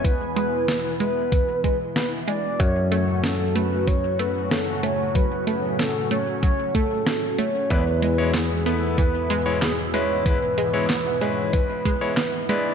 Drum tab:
HH |xxxxxxxx|xxxxxxxx|xxxxxxxx|xxxxxxxx|
CP |--------|--------|--------|--x---x-|
SD |--o---o-|--o---o-|--o---o-|--o---o-|
BD |o---oo--|o---o---|o---oo--|o---o---|

HH |xxxxxxxx|
CP |--x---x-|
SD |--o---o-|
BD |o---oo--|